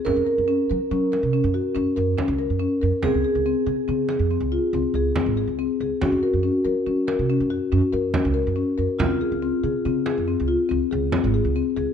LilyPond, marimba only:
\new Staff \with { instrumentName = "Marimba" } { \time 7/4 \key ges \lydian \tempo 4 = 141 des'8 bes'8 des'8 bes'8 des'8 bes'8 des'8 ges'8 des'8 bes'8 des'8 bes'8 des'8 bes'8 | c'8 aes'8 c'8 aes'8 c'8 aes'8 c'8 f'8 c'8 aes'8 c'8 aes'8 c'8 aes'8 | des'8 bes'8 des'8 bes'8 des'8 bes'8 des'8 ges'8 des'8 bes'8 des'8 bes'8 des'8 bes'8 | c'8 aes'8 c'8 aes'8 c'8 aes'8 c'8 f'8 c'8 aes'8 c'8 aes'8 c'8 aes'8 | }